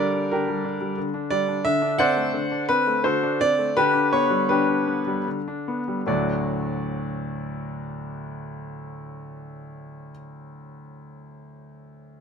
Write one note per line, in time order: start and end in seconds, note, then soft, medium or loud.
0.00 0.30 D3 medium
0.00 0.24 G3 medium
0.00 0.14 D4 medium
0.00 0.33 G4 medium
0.00 0.31 A#4 loud
0.00 0.30 D5 loud
0.14 0.31 D4 medium
0.31 0.96 D3 medium
0.31 0.63 D4 medium
0.31 0.95 G4 medium
0.31 0.98 A#4 medium
0.49 0.75 G3 medium
0.65 0.91 D4 medium
0.81 1.08 G3 medium
0.98 1.63 D3 medium
1.14 1.41 D4 medium
1.30 1.58 G3 medium
1.30 1.65 D5 loud
1.48 1.65 D4 medium
1.65 2.32 D3 medium
1.65 1.99 E5 loud
1.82 2.10 D4 medium
1.99 2.27 C4 medium
1.99 2.65 C5 medium
1.99 2.65 D5 loud
1.99 2.68 F#5 loud
2.17 2.44 A3 medium
2.34 3.03 D3 medium
2.51 2.79 D4 medium
2.69 2.97 C4 medium
2.69 3.04 B4 loud
2.87 3.15 A3 medium
3.04 3.73 D3 medium
3.04 3.37 F#4 medium
3.04 3.37 A4 medium
3.04 3.39 C5 loud
3.23 3.51 D4 medium
3.41 3.69 C4 medium
3.41 3.76 D5 loud
3.59 3.76 A3 medium
3.77 4.48 D3 medium
3.77 3.92 D4 medium
3.77 4.10 G4 medium
3.77 4.12 B4 loud
3.94 4.23 D4 medium
4.13 4.42 B3 medium
4.13 4.49 C#5 loud
4.30 4.60 G3 medium
4.49 5.26 D3 medium
4.49 4.67 D4 medium
4.49 5.23 G4 medium
4.49 5.26 B4 loud
4.68 4.99 D4 medium
4.87 5.19 B3 medium
5.07 5.38 G3 medium
5.27 6.06 D3 medium
5.48 5.80 D4 medium
5.68 6.00 B3 medium
5.88 6.08 G3 medium
6.07 10.11 D2 medium
6.07 10.10 A2 medium
6.07 10.11 F#3 medium
6.07 10.11 A3 medium
6.07 10.11 D4 medium
6.07 10.11 F#4 medium
6.07 10.11 D5 medium